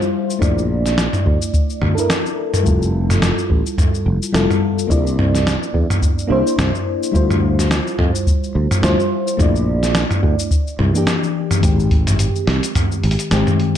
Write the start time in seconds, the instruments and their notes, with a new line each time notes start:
Already playing: fm electric piano G3 E4 F4 C5
0.02 cabasa
0.30 cabasa
0.39 fretless electric bass A#1, fm electric piano A3 D4 E4, kick, mid tom, cabasa
0.44 fm electric piano D5
0.58 cabasa
0.86 snare, cabasa
0.98 snare, cabasa
1.13 mid tom, cabasa
1.26 fretless electric bass D2, kick
1.42 cabasa
1.54 kick, cabasa
1.70 cabasa
1.82 fretless electric bass D2, kick, mid tom
1.95 fm electric piano D4 E4 A4, cabasa
2.00 fm electric piano A#4
2.10 snare, cabasa
2.26 cabasa
2.54 mid tom, cabasa
2.63 fretless electric bass F1, fm electric piano G3 E4 F4, kick, cabasa
2.68 fm electric piano A4
2.82 cabasa
3.10 snare, mid tom, cabasa
3.22 snare, cabasa
3.38 cabasa
3.50 fretless electric bass A1, kick
3.66 cabasa
3.78 kick, mid tom, cabasa
3.95 cabasa
4.06 fretless electric bass F1
4.23 cabasa
4.32 fretless electric bass F1, fm electric piano G3 E4 F4 A4, snare, cabasa
4.50 mid tom, cabasa
4.79 cabasa
4.87 fretless electric bass C2, fm electric piano A#3 D4 E4, kick, cabasa
4.92 fm electric piano D5
5.07 cabasa
5.19 mid tom
5.35 snare, cabasa
5.47 snare, cabasa
5.63 cabasa
5.74 fretless electric bass E2, kick
5.90 mid tom, cabasa
6.02 kick, cabasa
6.19 cabasa
6.27 fretless electric bass C2, fm electric piano A#3 D4 E4
6.32 fm electric piano C5
6.47 cabasa
6.58 fretless electric bass C2, snare, mid tom, cabasa
6.75 cabasa
7.03 cabasa
7.12 fretless electric bass D2, fm electric piano G3 E4 F4, kick, cabasa
7.17 fm electric piano C5
7.30 mid tom, cabasa
7.59 snare, cabasa
7.71 snare, cabasa
7.87 cabasa
7.99 fretless electric bass F2, kick, mid tom
8.15 cabasa
8.27 kick, cabasa
8.44 cabasa
8.55 fretless electric bass D2
8.71 mid tom, cabasa
8.82 fretless electric bass D2, fm electric piano G3 E4 F4 C5, snare, cabasa
9.00 cabasa
9.28 cabasa
9.37 fretless electric bass A#1, fm electric piano A3 D4 E4, kick, mid tom, cabasa
9.42 fm electric piano D5
9.56 cabasa
9.83 snare, cabasa
9.95 snare, cabasa
10.11 mid tom, cabasa
10.23 fretless electric bass D2, kick
10.39 cabasa
10.51 kick, cabasa
10.67 cabasa
10.79 fretless electric bass C2, mid tom
10.93 fm electric piano E3 A#3 D4, cabasa
10.98 fm electric piano G4
11.07 snare, cabasa
11.23 cabasa
11.51 mid tom, cabasa
11.61 fretless electric bass G#1, fm electric piano D#3 G#3 C4, kick, open hi-hat, cabasa
11.66 fm electric piano G4
11.80 cabasa
11.91 kick, open hi-hat
12.07 mid tom, open hi-hat, cabasa
12.19 open hi-hat, cabasa
12.36 cabasa
12.47 fretless electric bass C2, snare, open hi-hat
12.63 open hi-hat, cabasa
12.75 kick, mid tom, open hi-hat, cabasa
12.92 cabasa
13.03 fretless electric bass G#1, open hi-hat
13.11 open hi-hat
13.19 open hi-hat, cabasa
13.31 fretless electric bass G#1, fm electric piano D#3 G#3 C4 G4, snare, open hi-hat, cabasa
13.47 mid tom, cabasa
13.60 open hi-hat